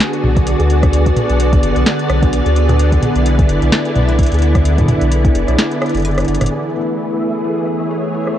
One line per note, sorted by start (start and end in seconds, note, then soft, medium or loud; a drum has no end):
0.00 6.51 D3 medium
0.00 8.34 B3 medium
0.00 3.00 F#4 medium
0.00 6.52 G#4 medium
0.00 6.51 D5 medium
0.00 snare loud
0.00 closed hi-hat medium
0.13 closed hi-hat soft
0.23 0.55 B1 medium
0.23 mid tom medium
0.36 kick loud
0.36 closed hi-hat soft
0.47 closed hi-hat medium
0.60 1.13 D2 medium
0.60 closed hi-hat soft
0.70 closed hi-hat medium
0.83 kick loud
0.83 cross-stick soft
0.83 closed hi-hat soft
0.93 closed hi-hat medium
1.06 kick medium
1.06 closed hi-hat soft
1.16 closed hi-hat medium
1.16 mid tom medium
1.29 1.59 B1 medium
1.29 closed hi-hat soft
1.40 closed hi-hat medium
1.53 kick loud
1.53 closed hi-hat soft
1.63 1.73 F#1 loud
1.63 closed hi-hat medium
1.76 1.84 B1 loud
1.76 closed hi-hat soft
1.86 snare loud
1.86 closed hi-hat medium
1.99 closed hi-hat soft
2.09 2.41 B1 medium
2.09 cross-stick medium
2.09 closed hi-hat soft
2.22 kick loud
2.22 closed hi-hat soft
2.33 closed hi-hat medium
2.46 2.99 D2 medium
2.46 closed hi-hat soft
2.56 closed hi-hat medium
2.69 cross-stick medium
2.69 closed hi-hat soft
2.69 mid tom medium
2.79 closed hi-hat medium
2.86 7.42 E4 medium
2.92 kick medium
2.92 closed hi-hat soft
3.02 closed hi-hat medium
3.02 mid tom medium
3.15 3.45 B1 medium
3.15 closed hi-hat soft
3.26 closed hi-hat medium
3.39 kick loud
3.39 closed hi-hat soft
3.49 3.59 F#1 loud
3.49 closed hi-hat medium
3.62 3.70 B1 loud
3.62 closed hi-hat soft
3.72 snare loud
3.72 closed hi-hat medium
3.85 closed hi-hat soft
3.96 4.27 B1 medium
3.96 closed hi-hat soft
3.96 mid tom medium
3.99 mid tom medium
4.02 mid tom medium
4.05 closed hi-hat soft
4.05 mid tom soft
4.11 mid tom soft
4.14 mid tom soft
4.19 kick loud
4.19 closed hi-hat medium
4.23 closed hi-hat medium
4.26 closed hi-hat medium
4.32 4.85 D2 medium
4.32 closed hi-hat soft
4.34 closed hi-hat soft
4.39 closed hi-hat soft
4.42 closed hi-hat medium
4.55 kick loud
4.55 cross-stick medium
4.55 closed hi-hat soft
4.65 closed hi-hat medium
4.78 kick medium
4.78 closed hi-hat soft
4.81 kick medium
4.83 kick soft
4.86 kick soft
4.86 closed hi-hat medium
4.86 mid tom medium
4.89 kick soft
4.92 kick soft
4.95 kick soft
4.98 5.31 B1 loud
4.98 kick soft
4.98 closed hi-hat soft
5.12 closed hi-hat loud
5.25 kick loud
5.25 closed hi-hat soft
5.35 5.45 F#1 loud
5.35 closed hi-hat medium
5.48 5.56 B1 loud
5.48 cross-stick soft
5.48 closed hi-hat soft
5.51 cross-stick soft
5.53 cross-stick soft
5.56 cross-stick soft
5.58 cross-stick soft
5.58 snare loud
5.58 closed hi-hat medium
5.62 cross-stick soft
5.71 closed hi-hat soft
5.82 cross-stick medium
5.82 closed hi-hat soft
5.86 closed hi-hat soft
5.89 closed hi-hat soft
5.95 6.24 F#1 medium
5.95 closed hi-hat soft
5.97 closed hi-hat soft
6.00 closed hi-hat soft
6.02 closed hi-hat soft
6.05 closed hi-hat medium
6.08 closed hi-hat soft
6.11 closed hi-hat soft
6.15 cross-stick medium
6.15 closed hi-hat soft
6.18 closed hi-hat soft
6.20 closed hi-hat soft
6.25 6.38 F#1 medium
6.25 closed hi-hat soft
6.28 closed hi-hat medium
6.35 closed hi-hat medium
6.41 6.49 F#1 medium
6.41 cross-stick medium
6.41 closed hi-hat medium
6.41 mid tom medium
6.46 closed hi-hat medium
6.51 8.38 E3 medium
6.51 8.38 E5 medium
6.64 closed hi-hat soft
6.68 8.38 A3 medium
6.75 closed hi-hat medium
6.98 closed hi-hat medium
7.04 8.38 G#4 medium
7.11 closed hi-hat soft
7.21 closed hi-hat medium
7.34 closed hi-hat soft
7.44 closed hi-hat medium
7.57 closed hi-hat soft
7.68 8.38 C#5 medium
7.68 closed hi-hat soft
7.75 closed hi-hat soft
7.81 closed hi-hat soft
7.83 closed hi-hat soft
7.91 closed hi-hat medium
8.04 closed hi-hat soft
8.14 closed hi-hat medium
8.27 cross-stick soft
8.27 closed hi-hat soft